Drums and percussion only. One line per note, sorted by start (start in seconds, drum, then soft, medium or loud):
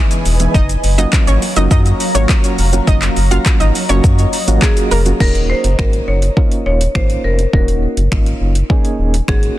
0.11 closed hi-hat medium
0.11 shaker medium
0.26 open hi-hat medium
0.26 shaker medium
0.40 closed hi-hat medium
0.40 shaker medium
0.55 kick loud
0.55 shaker medium
0.69 closed hi-hat medium
0.69 shaker medium
0.84 open hi-hat medium
0.84 shaker medium
0.98 closed hi-hat medium
0.98 shaker medium
1.13 kick loud
1.13 clap loud
1.13 shaker medium
1.27 closed hi-hat medium
1.27 shaker medium
1.42 open hi-hat medium
1.42 shaker medium
1.56 closed hi-hat medium
1.56 shaker medium
1.71 kick loud
1.71 shaker medium
1.86 closed hi-hat medium
1.86 shaker medium
2.00 open hi-hat medium
2.00 shaker medium
2.15 closed hi-hat medium
2.15 shaker medium
2.29 kick loud
2.29 clap loud
2.29 shaker medium
2.44 closed hi-hat medium
2.44 shaker medium
2.58 open hi-hat medium
2.58 shaker medium
2.73 closed hi-hat medium
2.73 shaker medium
2.87 kick loud
2.87 shaker medium
3.02 clap medium
3.02 closed hi-hat medium
3.02 shaker medium
3.17 open hi-hat medium
3.17 shaker soft
3.31 closed hi-hat medium
3.31 shaker medium
3.46 kick loud
3.46 clap loud
3.46 shaker medium
3.60 closed hi-hat medium
3.60 shaker medium
3.75 open hi-hat medium
3.75 shaker medium
3.89 closed hi-hat medium
3.89 shaker medium
4.04 kick loud
4.04 shaker medium
4.19 closed hi-hat medium
4.19 shaker medium
4.33 open hi-hat medium
4.33 shaker medium
4.48 closed hi-hat medium
4.48 shaker medium
4.62 kick loud
4.62 clap loud
4.62 shaker medium
4.77 closed hi-hat medium
4.77 shaker medium
4.91 open hi-hat medium
4.91 shaker medium
5.06 closed hi-hat medium
5.06 shaker medium
5.20 kick loud
5.20 crash medium
5.35 closed hi-hat medium
5.64 closed hi-hat medium
5.79 finger snap loud
5.79 kick loud
5.93 closed hi-hat medium
6.22 closed hi-hat medium
6.37 kick loud
6.52 closed hi-hat soft
6.81 closed hi-hat medium
6.95 finger snap loud
6.95 kick loud
7.10 closed hi-hat medium
7.39 closed hi-hat medium
7.53 kick loud
7.68 closed hi-hat medium
7.97 closed hi-hat medium
8.12 finger snap loud
8.12 kick loud
8.26 closed hi-hat medium
8.55 closed hi-hat medium
8.70 kick loud
8.85 closed hi-hat soft
9.14 closed hi-hat medium
9.28 finger snap loud
9.28 kick loud
9.43 closed hi-hat medium